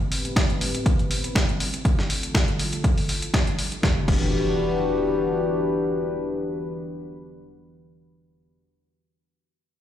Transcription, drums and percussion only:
0, 0, Header, 1, 2, 480
1, 0, Start_track
1, 0, Key_signature, 1, "minor"
1, 0, Tempo, 495868
1, 1791, Time_signature, 4, 2, 24, 8
1, 9487, End_track
2, 0, Start_track
2, 0, Title_t, "Drums"
2, 113, Note_on_c, 9, 46, 102
2, 209, Note_off_c, 9, 46, 0
2, 242, Note_on_c, 9, 42, 49
2, 339, Note_off_c, 9, 42, 0
2, 351, Note_on_c, 9, 36, 119
2, 353, Note_on_c, 9, 42, 57
2, 355, Note_on_c, 9, 38, 113
2, 448, Note_off_c, 9, 36, 0
2, 449, Note_off_c, 9, 42, 0
2, 452, Note_off_c, 9, 38, 0
2, 482, Note_on_c, 9, 42, 33
2, 579, Note_off_c, 9, 42, 0
2, 593, Note_on_c, 9, 46, 104
2, 689, Note_off_c, 9, 46, 0
2, 722, Note_on_c, 9, 42, 50
2, 819, Note_off_c, 9, 42, 0
2, 831, Note_on_c, 9, 36, 121
2, 832, Note_on_c, 9, 42, 60
2, 928, Note_off_c, 9, 36, 0
2, 929, Note_off_c, 9, 42, 0
2, 962, Note_on_c, 9, 42, 34
2, 1058, Note_off_c, 9, 42, 0
2, 1071, Note_on_c, 9, 46, 101
2, 1168, Note_off_c, 9, 46, 0
2, 1202, Note_on_c, 9, 42, 47
2, 1299, Note_off_c, 9, 42, 0
2, 1311, Note_on_c, 9, 36, 111
2, 1313, Note_on_c, 9, 42, 60
2, 1315, Note_on_c, 9, 38, 116
2, 1408, Note_off_c, 9, 36, 0
2, 1409, Note_off_c, 9, 42, 0
2, 1411, Note_off_c, 9, 38, 0
2, 1442, Note_on_c, 9, 42, 34
2, 1539, Note_off_c, 9, 42, 0
2, 1552, Note_on_c, 9, 46, 102
2, 1649, Note_off_c, 9, 46, 0
2, 1682, Note_on_c, 9, 42, 45
2, 1778, Note_off_c, 9, 42, 0
2, 1791, Note_on_c, 9, 36, 114
2, 1792, Note_on_c, 9, 42, 59
2, 1888, Note_off_c, 9, 36, 0
2, 1889, Note_off_c, 9, 42, 0
2, 1923, Note_on_c, 9, 38, 34
2, 2020, Note_off_c, 9, 38, 0
2, 2032, Note_on_c, 9, 46, 100
2, 2129, Note_off_c, 9, 46, 0
2, 2161, Note_on_c, 9, 42, 46
2, 2257, Note_off_c, 9, 42, 0
2, 2271, Note_on_c, 9, 36, 109
2, 2271, Note_on_c, 9, 42, 57
2, 2274, Note_on_c, 9, 38, 107
2, 2367, Note_off_c, 9, 36, 0
2, 2368, Note_off_c, 9, 42, 0
2, 2370, Note_off_c, 9, 38, 0
2, 2401, Note_on_c, 9, 42, 33
2, 2498, Note_off_c, 9, 42, 0
2, 2511, Note_on_c, 9, 46, 96
2, 2608, Note_off_c, 9, 46, 0
2, 2640, Note_on_c, 9, 42, 47
2, 2737, Note_off_c, 9, 42, 0
2, 2750, Note_on_c, 9, 36, 110
2, 2751, Note_on_c, 9, 42, 54
2, 2847, Note_off_c, 9, 36, 0
2, 2848, Note_off_c, 9, 42, 0
2, 2881, Note_on_c, 9, 46, 57
2, 2977, Note_off_c, 9, 46, 0
2, 2991, Note_on_c, 9, 46, 93
2, 3088, Note_off_c, 9, 46, 0
2, 3121, Note_on_c, 9, 42, 45
2, 3217, Note_off_c, 9, 42, 0
2, 3230, Note_on_c, 9, 36, 114
2, 3232, Note_on_c, 9, 42, 56
2, 3234, Note_on_c, 9, 38, 108
2, 3327, Note_off_c, 9, 36, 0
2, 3329, Note_off_c, 9, 42, 0
2, 3331, Note_off_c, 9, 38, 0
2, 3361, Note_on_c, 9, 42, 32
2, 3458, Note_off_c, 9, 42, 0
2, 3471, Note_on_c, 9, 46, 98
2, 3568, Note_off_c, 9, 46, 0
2, 3601, Note_on_c, 9, 42, 45
2, 3697, Note_off_c, 9, 42, 0
2, 3710, Note_on_c, 9, 36, 100
2, 3711, Note_on_c, 9, 38, 80
2, 3807, Note_off_c, 9, 36, 0
2, 3807, Note_off_c, 9, 38, 0
2, 3950, Note_on_c, 9, 36, 101
2, 3951, Note_on_c, 9, 49, 73
2, 4047, Note_off_c, 9, 36, 0
2, 4048, Note_off_c, 9, 49, 0
2, 9487, End_track
0, 0, End_of_file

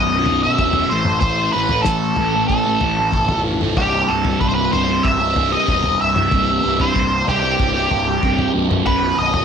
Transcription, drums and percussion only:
0, 0, Header, 1, 2, 480
1, 0, Start_track
1, 0, Tempo, 636267
1, 936, Time_signature, 4, 2, 24, 8
1, 7128, End_track
2, 0, Start_track
2, 0, Title_t, "Drums"
2, 195, Note_on_c, 9, 43, 82
2, 271, Note_off_c, 9, 43, 0
2, 442, Note_on_c, 9, 36, 89
2, 518, Note_off_c, 9, 36, 0
2, 551, Note_on_c, 9, 43, 74
2, 627, Note_off_c, 9, 43, 0
2, 792, Note_on_c, 9, 47, 72
2, 868, Note_off_c, 9, 47, 0
2, 912, Note_on_c, 9, 43, 80
2, 922, Note_on_c, 9, 36, 99
2, 987, Note_off_c, 9, 43, 0
2, 997, Note_off_c, 9, 36, 0
2, 1275, Note_on_c, 9, 43, 78
2, 1350, Note_off_c, 9, 43, 0
2, 1392, Note_on_c, 9, 38, 74
2, 1402, Note_on_c, 9, 36, 98
2, 1467, Note_off_c, 9, 38, 0
2, 1477, Note_off_c, 9, 36, 0
2, 1632, Note_on_c, 9, 43, 74
2, 1707, Note_off_c, 9, 43, 0
2, 1883, Note_on_c, 9, 36, 95
2, 1958, Note_off_c, 9, 36, 0
2, 2119, Note_on_c, 9, 43, 81
2, 2194, Note_off_c, 9, 43, 0
2, 2355, Note_on_c, 9, 47, 66
2, 2365, Note_on_c, 9, 36, 94
2, 2430, Note_off_c, 9, 47, 0
2, 2440, Note_off_c, 9, 36, 0
2, 2479, Note_on_c, 9, 43, 74
2, 2479, Note_on_c, 9, 47, 68
2, 2554, Note_off_c, 9, 43, 0
2, 2554, Note_off_c, 9, 47, 0
2, 2723, Note_on_c, 9, 47, 72
2, 2798, Note_off_c, 9, 47, 0
2, 2842, Note_on_c, 9, 43, 78
2, 2844, Note_on_c, 9, 36, 101
2, 2917, Note_off_c, 9, 43, 0
2, 2920, Note_off_c, 9, 36, 0
2, 3203, Note_on_c, 9, 43, 87
2, 3279, Note_off_c, 9, 43, 0
2, 3326, Note_on_c, 9, 36, 97
2, 3402, Note_off_c, 9, 36, 0
2, 3569, Note_on_c, 9, 43, 80
2, 3644, Note_off_c, 9, 43, 0
2, 3807, Note_on_c, 9, 36, 101
2, 3882, Note_off_c, 9, 36, 0
2, 4045, Note_on_c, 9, 43, 81
2, 4120, Note_off_c, 9, 43, 0
2, 4287, Note_on_c, 9, 36, 92
2, 4362, Note_off_c, 9, 36, 0
2, 4402, Note_on_c, 9, 43, 74
2, 4477, Note_off_c, 9, 43, 0
2, 4646, Note_on_c, 9, 47, 76
2, 4721, Note_off_c, 9, 47, 0
2, 4763, Note_on_c, 9, 43, 76
2, 4769, Note_on_c, 9, 36, 104
2, 4838, Note_off_c, 9, 43, 0
2, 4844, Note_off_c, 9, 36, 0
2, 5128, Note_on_c, 9, 43, 81
2, 5203, Note_off_c, 9, 43, 0
2, 5249, Note_on_c, 9, 36, 99
2, 5324, Note_off_c, 9, 36, 0
2, 5491, Note_on_c, 9, 43, 74
2, 5567, Note_off_c, 9, 43, 0
2, 5730, Note_on_c, 9, 36, 101
2, 5806, Note_off_c, 9, 36, 0
2, 5968, Note_on_c, 9, 43, 76
2, 6044, Note_off_c, 9, 43, 0
2, 6208, Note_on_c, 9, 36, 102
2, 6284, Note_off_c, 9, 36, 0
2, 6327, Note_on_c, 9, 43, 80
2, 6402, Note_off_c, 9, 43, 0
2, 6571, Note_on_c, 9, 47, 76
2, 6646, Note_off_c, 9, 47, 0
2, 6684, Note_on_c, 9, 43, 82
2, 6688, Note_on_c, 9, 36, 106
2, 6759, Note_off_c, 9, 43, 0
2, 6763, Note_off_c, 9, 36, 0
2, 7045, Note_on_c, 9, 43, 84
2, 7120, Note_off_c, 9, 43, 0
2, 7128, End_track
0, 0, End_of_file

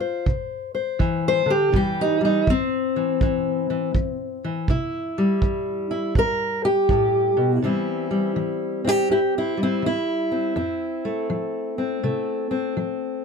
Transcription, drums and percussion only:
0, 0, Header, 1, 2, 480
1, 0, Start_track
1, 0, Key_signature, 0, "major"
1, 0, Tempo, 735294
1, 1135, Time_signature, 4, 2, 24, 8
1, 8647, End_track
2, 0, Start_track
2, 0, Title_t, "Drums"
2, 173, Note_on_c, 9, 36, 72
2, 238, Note_off_c, 9, 36, 0
2, 653, Note_on_c, 9, 36, 69
2, 718, Note_off_c, 9, 36, 0
2, 1134, Note_on_c, 9, 36, 68
2, 1199, Note_off_c, 9, 36, 0
2, 1615, Note_on_c, 9, 36, 70
2, 1680, Note_off_c, 9, 36, 0
2, 2096, Note_on_c, 9, 36, 71
2, 2161, Note_off_c, 9, 36, 0
2, 2576, Note_on_c, 9, 36, 67
2, 2641, Note_off_c, 9, 36, 0
2, 3056, Note_on_c, 9, 36, 69
2, 3121, Note_off_c, 9, 36, 0
2, 3537, Note_on_c, 9, 36, 74
2, 3602, Note_off_c, 9, 36, 0
2, 4017, Note_on_c, 9, 36, 76
2, 4082, Note_off_c, 9, 36, 0
2, 4498, Note_on_c, 9, 36, 71
2, 4564, Note_off_c, 9, 36, 0
2, 8647, End_track
0, 0, End_of_file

